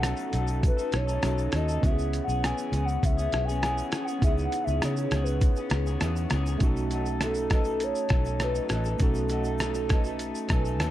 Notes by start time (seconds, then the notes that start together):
Already playing: B1 C#4 D#4 F#4 A4 F#5
0.01 B2 F#3 A3 D#4 A4, cross-stick, closed hi-hat, shaker
0.17 shaker
0.19 shaker
0.31 B1 F#3 A3 D#4 A4, closed hi-hat, shaker
0.47 shaker
0.49 shaker
0.63 B4, kick, closed hi-hat, shaker
0.77 A3 D#4 A4, shaker
0.92 B1 C#5, cross-stick, closed hi-hat, shaker
1.07 A3 D#4 A4, shaker
1.22 B1 B2 F#3 A3 C#4 D#4 F#4 A4, cross-stick, closed hi-hat, shaker
1.25 A4, shaker
1.38 shaker
1.52 D#2 F#3 A3 D#4 D#5, cross-stick, closed hi-hat, shaker
1.56 A4, shaker
1.68 D#4 A4, shaker
1.70 A3, shaker
1.81 C#2 C#3 E3 B3 C#4 E4, kick, closed hi-hat, shaker
1.86 F#4 G#4 E5
1.93 G#4
1.99 shaker
2.13 closed hi-hat, shaker
2.24 B1 G#4 F#5
2.29 B3 C#4, shaker
2.42 C#3 E3 B3 C#4 G#4 G#5, cross-stick, closed hi-hat, shaker
2.58 shaker
2.72 C#2 E3 B3 C#4, closed hi-hat, shaker
2.76 G#4
2.85 F#5, shaker
3.03 C#2 E5, kick, closed hi-hat, shaker
3.17 C#4 G#4, shaker
3.21 B3
3.32 B1, cross-stick, closed hi-hat, shaker
3.45 G#4 G#5, shaker
3.50 B3 C#4, shaker
3.63 C#3 E3 B3, cross-stick, closed hi-hat, shaker
3.64 C#4 G#4, shaker
3.78 shaker
3.92 E3, cross-stick, closed hi-hat, shaker
3.94 B3 C#4 G#4, shaker
4.05 G#4 F#5, shaker
4.09 B3 C#4
4.19 C#2 B3 D#4, kick, closed hi-hat, shaker
4.23 C#3 E3 B3 C#4 E4 G#4 E5, shaker
4.37 shaker
4.44 F#5
4.52 closed hi-hat, shaker
4.64 C#2 E5, shaker
4.69 C#4 G#4
4.73 B3
4.81 C#3 E3 B3 C#4 G#4 C#5, cross-stick, closed hi-hat, shaker
4.96 shaker
5.11 C#2 E3 B3, cross-stick, closed hi-hat, shaker
5.16 C#4 G#4
5.24 B4, shaker
5.28 shaker
5.41 kick, closed hi-hat, shaker
5.56 G#4, shaker
5.60 B3 C#4
5.70 C#2, cross-stick, closed hi-hat, shaker
5.86 C#4 G#4, shaker
5.91 B3
6.01 E2 C#3 E3 B3 C#4 G#4, cross-stick, closed hi-hat, shaker
6.16 shaker
6.30 C#2, cross-stick, closed hi-hat, shaker
6.32 E3 B3 C#4 G#4, shaker
6.46 C#4 G#4, shaker
6.52 B3
6.58 B1 A3 C#4 D#4, kick, closed hi-hat, shaker
6.62 B2 F#3 A3 D#4 F#4 A4, shaker
6.76 shaker
6.91 F#3 A3 D#4 D#5 F#5, closed hi-hat, shaker
6.95 A4
7.06 D#4 A4, shaker
7.11 A3
7.21 B2 F#3 A3 D#4 A4, cross-stick, closed hi-hat, shaker
7.34 A4, shaker
7.36 A3 D#4, shaker
7.50 F#3 A3 D#4 B4 D#5, kick, cross-stick, closed hi-hat, shaker
7.55 A4
7.64 D#4 A4, shaker
7.69 A3
7.80 C#5, closed hi-hat, shaker
7.95 shaker
8.09 B1 F#3 A3 D#4 A4 C#5, kick, cross-stick, closed hi-hat, shaker
8.13 A4
8.25 A3 D#4 A4, shaker
8.40 B2 F#3 A3 D#4 A4 B4 D#5, cross-stick, closed hi-hat, shaker
8.55 shaker
8.69 A1 F#3 A3 D#4 D#5, cross-stick, closed hi-hat, shaker
8.73 A4 B4
8.84 D#4 A4, shaker
8.89 A3
8.98 B1 B2 A3 C#4 D#4, kick, closed hi-hat, shaker
9.02 F#3 D#4 F#4 A4
9.14 shaker
9.29 F#3 A3 D#4 A4 D#5 F#5, closed hi-hat, shaker
9.44 D#4 A4, shaker
9.48 A3
9.59 B2, cross-stick, closed hi-hat, shaker
9.61 F#3 A3 D#4 A4, shaker
9.74 A3 D#4 A4, shaker
9.88 F#3 A3 D#4 A4 D#5, kick, cross-stick, closed hi-hat, shaker
9.92 B4
10.04 A3 D#4 A4, shaker
10.19 closed hi-hat, shaker
10.35 shaker
10.48 B1 F#3 A3, kick, cross-stick, closed hi-hat, shaker
10.51 D#4 A4 B4 G#5, shaker
10.64 D#4 A4, shaker
10.67 A3, shaker
10.79 D#2 B2 F#3 A3 D#4 A4, cross-stick, closed hi-hat, shaker